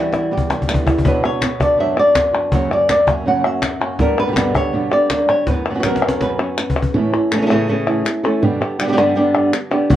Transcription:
Already playing: E3 G3 B3 E4 F#4
0.13 E4, cajon slap
0.31 B2 G4, muted nylon-string guitar stroke
0.38 cajon bass
0.50 G3, cajon slap
0.62 cajon bass
0.68 D3 E3 G3 B3 E4, clap
0.74 cajon bass
0.86 C#3 E3 G3 B3 E4, cajon bass
0.99 cajon bass
1.04 B2 F#3 B3 D4 F#4 B4, cajon bass
1.23 B3 D4 F#4 C#5
1.41 B3, muted nylon-string guitar stroke, cajon slap, clap
1.60 B3 D4 F#4 D5, cajon bass
1.78 F#2 B2 F#3 B3 D4 F#4 E5
1.97 B3 D4 F#4 D5
2.15 F#4, muted nylon-string guitar stroke, cajon bass, cajon slap, clap
2.33 B3 D4 F#4 B4
2.52 F#2 C#3 F#3 A#3 C#4 F#4 C#5, cajon bass
2.71 F#3 A#3 C#4 F#4 D5
2.89 C#4 D5, muted nylon-string guitar stroke, cajon slap, clap
3.07 F#3 A#3 C#4 F#4 E5, cajon bass
3.26 F#2 C#3 F#3 A#3 C#4 F#4 F#5
3.44 F#3 A#3 C#4 F#4 E5
3.62 muted nylon-string guitar stroke, cajon slap, clap
3.80 F#2 F#3 A#3 C#4 F#4, clap
3.99 G3 B3 D4 A#4, muted nylon-string guitar stroke, cajon bass, cajon slap
4.19 B4
4.27 B2 D3 G3 B3 G4
4.32 B2 D3 G3 B3 G4
4.36 G2 B2 D3 G3 B3 G4, cajon slap, clap
4.54 D3 G3 B3 G4 C#5, cajon bass
4.73 G2 B2 D3 G3 B3 G4
4.91 D3 G3 B3 G4 D5
5.09 A#3, muted nylon-string guitar stroke, cajon slap, clap
5.28 G3 C#5
5.47 F#2 B3 C#4 B4, muted nylon-string guitar stroke, cajon bass, cajon slap
5.65 cajon slap
5.70 B2 F#3 B3 C#4 F#4
5.74 B2 F#3 B3 C#4 F#4
5.79 B2 F#3 B3 C#4 F#4
5.83 F#2 B2 F#3 B3 C#4 F#4 A#4, cajon slap, clap
5.96 cajon slap
6.02 F#3 B3 C#4 F#4
6.08 cajon slap
6.20 F#2 B2 F#3 B3 C#4 F#4 B4, cajon slap
6.38 F#3 B3 C#4 F#4
6.57 C#4, muted nylon-string guitar stroke, clap
6.69 cajon bass
6.76 clap
6.82 cajon bass
6.94 A2 E3 A3 C#4 E4, muted nylon-string guitar stroke
7.13 A3 C#4 E4
7.31 E3 A3 C#4 E4 A4, clap
7.37 C#3 E3 A3 C#4 A4
7.41 C#3 E3 A3 C#4 A4
7.46 C#3 E3 A3 C#4 A4
7.50 A2 C#3 E3 A3 C#4 E4 A4
7.68 A2 C#3 E3 A3 C#4 A4, muted nylon-string guitar stroke
7.87 A3 C#4 E4
8.05 muted nylon-string guitar stroke, clap
8.23 E3 A3 C#4 E4 A4, clap
8.42 G2 B2 D3 G3 B3 G4, muted nylon-string guitar stroke
8.61 D3 G3 B3 G4
8.79 D3 G3 B3 D4 G4, clap
8.84 D3 B3 D4 G4
8.88 D3 G3 B3 D4 G4
8.93 D3 G3 B3 D4 G4
8.97 G2 D3 G3 B3 D4 G4
9.15 G2 D3 G3 B3 D4 G4, muted nylon-string guitar stroke
9.34 D3 G3 B3 G4
9.53 muted nylon-string guitar stroke, clap
9.71 D3 G3 B3 D4 G4, clap
9.90 E2 B2 E3 G3 B3 F#4, muted nylon-string guitar stroke, cajon bass

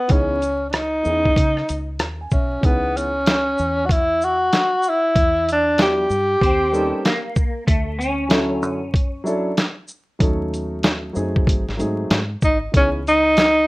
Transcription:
Already playing: B3
0.08 C#2 E3 B3 C#4 D#4 G#4, kick, closed hi-hat
0.42 closed hi-hat, shaker
0.70 D4, closed hi-hat
0.74 D#4, cross-stick
1.03 E2 E3 B3 C#4 D#4 G#4, shaker
1.25 kick
1.36 C#3, kick, closed hi-hat
1.57 cross-stick
1.69 C#2, closed hi-hat, shaker
1.99 D#2 A#5, cross-stick, closed hi-hat
2.21 G#5
2.31 B1 C#4 E5, kick, shaker
2.61 C#2 E3 B3 C#4 D#4 G#4, kick, closed hi-hat
2.66 B3
2.97 C#4, closed hi-hat, shaker
3.26 snare, closed hi-hat
3.58 E2, shaker
3.85 F#4, kick
3.91 E4, closed hi-hat
4.22 F#4, shaker
4.53 snare, closed hi-hat
4.83 shaker
4.89 E4
5.16 E2, kick, closed hi-hat
5.49 D4, closed hi-hat, shaker
5.78 F#3 B3 D4 E4 G4, snare, closed hi-hat
5.82 G4
6.10 G2, shaker
6.41 D#2 C4, kick, closed hi-hat
6.72 G3 A#3 C#4 D#4 A4, shaker
7.05 A#3, snare, closed hi-hat
7.36 kick, shaker
7.67 D2 A3, kick, closed hi-hat
7.99 C#4, closed hi-hat, shaker
8.29 D3 F#3 C#4 E4 A4, snare, closed hi-hat
8.62 F#2, shaker
8.94 kick, closed hi-hat
9.24 F#3 C#4 D4 E4 A4, shaker
9.57 snare, closed hi-hat
9.88 shaker
10.19 D#2 F#3 A3 C#4 D#4 A4, kick, closed hi-hat
10.54 closed hi-hat, shaker
10.83 snare, closed hi-hat
11.13 F#2 F#3 A3 C4 D#4 G#4, shaker
11.36 kick
11.47 G#1, kick, closed hi-hat
11.68 G#1, snare
11.77 G#2 F#3 A3 C4 D#4 G#4, closed hi-hat, shaker
12.10 G#2, snare, closed hi-hat
12.42 G#1 D#4, kick, shaker
12.72 C#2 E3 B3 C#4 D#4 G#4, kick, closed hi-hat
12.76 C#4
13.07 D#4, closed hi-hat, shaker
13.37 snare, closed hi-hat

